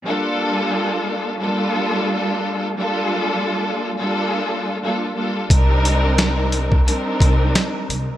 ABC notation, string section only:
X:1
M:4/4
L:1/16
Q:"Swing 16ths" 1/4=88
K:Gm
V:1 name="String section"
[G,B,DFA]6- [G,B,DFA] z [G,B,DFA]6- [G,B,DFA] z | [G,B,DFA]6 z [G,B,DFA]4- [G,B,DFA] [G,B,DFA]2 [G,B,DFA]2 | [G,CDEB]6- [G,CDEB] z [G,CDEB]6- [G,CDEB] z |]